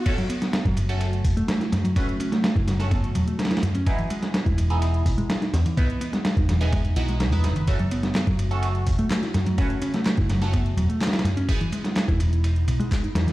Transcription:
<<
  \new Staff \with { instrumentName = "Synth stab" } { \time 4/4 \key fis \dorian \tempo 4 = 126 <a cis' fis' a'>16 r4. <a cis' fis' a'>16 r2 | <a cis' fis' b'>16 r4. <a cis' fis' a'>16 r2 | <b dis' e' gis'>16 r4. <b dis' e' gis'>16 r2 | <b dis' e' b'>16 r4. <b dis' e' gis'>16 r8 <b dis' e' fis'>16 r8 <b dis' e' b'>16 r8 |
<a cis' fis' a'>16 r4. <a cis' fis' a'>16 r2 | <a cis' fis' b'>16 r4. <a cis' fis' a'>16 r2 | <b dis' e' gis'>16 r2. r8. | }
  \new Staff \with { instrumentName = "Ambient pad" } { \time 4/4 \key fis \dorian << { fis'1~ | fis'1 | e'1 | dis'1 |
fis'1~ | fis'1 | e'1 | } \\ { <cis fis a>1~ | <cis fis a>1 | <e gis b>1~ | <e gis b>1 |
<cis fis a>1~ | <cis fis a>1 | <gis b dis'>1 | } >> }
  \new Staff \with { instrumentName = "Picked electric bass" } { \time 4/4 \key fis \dorian r16 fis16 b8. fis16 r4 r16 a16 a16 e'16 r16 fis16 | cis'8 cis'16 a8 e'16 fis16 r16 b16 r16 fis16 a16 r16 e'16 r16 cis'16 | r16 e16 gis8. e'16 r4 r16 gis16 gis16 dis'16 r16 e16 | b8 b16 gis8 dis'16 e16 r16 gis16 r16 e'16 gis16 r16 gis16 r16 dis16 |
r16 fis16 b8. fis16 r4 r16 a16 a16 e'16 r16 fis16 | cis'8 cis'16 a8 e'16 fis16 r16 b16 r16 fis16 a16 r16 e'16 r16 cis'16 | r16 e16 gis8. e'16 r4 r16 gis16 gis16 dis'16 r16 e16 | }
  \new Staff \with { instrumentName = "Picked electric bass" } { \clef bass \time 4/4 \key fis \dorian r4 r16 fis,,4~ fis,,16 e,,16 r8. fis,16 r16 | r4 r16 fis,,4~ fis,,16 e,,16 r8. fis,16 r16 | r4 r16 e,,4~ e,,16 b,,16 r8. e,16 r16 | r4 r16 e,,4~ e,,16 b,,8. e,16 fis,,8~ |
fis,,4 r16 fis,,4~ fis,,16 e,,16 r8. fis,16 r16 | r4 r16 fis,,4~ fis,,16 e,,16 r8. fis,16 r16 | r4 r16 e,,4~ e,,16 b,,16 r8. e,16 r16 | }
  \new DrumStaff \with { instrumentName = "Drums" } \drummode { \time 4/4 <cymc hh bd cymr>16 hh16 <hh cymr>16 <hh sn>16 <hh cymr sn>16 <hh bd>16 <hh cymr>16 hh16 <hh cymr>16 hh16 <hh hho bd>16 hh16 <hh cymr sn>16 <hh sn>16 <hh cymr sn>16 <hh cymr>16 | <hh bd cymr>16 hh16 <hh cymr>16 <hh sn>16 <hh cymr sn>16 <hh bd>16 <hh cymr sn>16 <hh sn>16 <hh bd cymr>16 hh16 <hh cymr>16 hh16 <hh cymr sn>32 <cymr sn>32 <hh cymr sn>32 <cymr sn>32 <hh cymr sn>16 <hh cymr>16 | <hh bd cymr>16 hh16 <hh cymr>16 <hh sn>16 <hh cymr sn>16 <hh bd>16 <hh cymr>16 hh16 <hh cymr>16 hh16 <hh hho bd>16 hh16 <hh cymr sn>16 <hh sn>16 <hh cymr sn>16 <hh cymr>16 | <hh bd cymr>16 hh16 <hh cymr>16 <hh sn>16 <hh cymr sn>16 <hh bd>16 <hh cymr sn>16 <hh sn>16 <hh bd cymr>16 hh16 <hh cymr>16 hh16 <hh cymr sn>16 hh16 <hh cymr sn>16 <hh cymr>16 |
<hh bd cymr>16 hh16 <hh cymr>16 <hh sn>16 <hc hh cymr sn>16 <hh bd>16 <hh cymr>16 hh16 <hh cymr>16 hh16 <hh hho bd>16 hh16 <hc hh cymr sn>16 <hh sn>16 <hh cymr sn>16 <hh cymr>16 | <hh bd cymr>16 hh16 <hh cymr>16 <hh sn>16 <hc hh cymr sn>16 <hh bd>16 <hh cymr sn>16 <hh sn>16 <hh bd cymr>16 hh16 <hh cymr>16 hh16 <hc hh cymr sn>32 <cymr sn>32 <hh cymr sn>32 <cymr sn>32 <hh cymr sn>16 <hh cymr>16 | <hh bd cymr>16 hh16 <hh cymr>16 <hh sn>16 <hc hh cymr sn>16 <hh bd>16 <hh cymr>16 hh16 <hh cymr>16 hh16 <hh cymr>16 hh16 <hc hh hho bd>16 hh16 <hh cymr sn>16 <hh sn>16 | }
>>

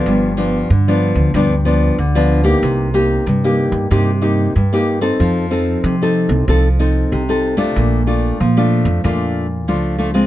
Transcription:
<<
  \new Staff \with { instrumentName = "Nylon-string guitar" } { \time 4/4 \key g \minor \tempo 4 = 94 << { <f b d'>8 <f b d'>8 r16 <f b d'>8. <f b d'>16 r16 <f b d'>8 r16 <f b d'>8 <bes ees' g'>16~ | <bes ees' g'>8 <bes ees' g'>8 r16 <bes ees' g'>8. <bes ees' g'>16 r16 <bes ees' g'>8 r16 <bes ees' g'>8 <c' ees' a'>16~ | <c' ees' a'>8 <c' ees' a'>8. <c' ees' a'>8. <c' ees' a'>16 r16 <c' ees' a'>8. <c' ees' a'>8 <a d' f'>16~ | <a d' f'>8 <a d' f'>8 r16 <a d' f'>8. <a d' f'>8. r16 <a d' f'>8 <a d' f'>16 <aes c' f'>16 | } \\ { g,4 d4 g,4 d4 | c4 g,4 c4 g,4 | f4 c4 f4 c4 | bes,4 f4 bes,4 f4 | } >> }
  \new Staff \with { instrumentName = "Upright bass" } { \clef bass \time 4/4 \key g \minor g,,4 g,8. d,16 d,4 d,4 | c,4 c8. g,16 g,4 g,4 | f,4 f8. c,16 c,4 c,4 | bes,,4 bes,8. f,16 f,4 cis,4 | }
>>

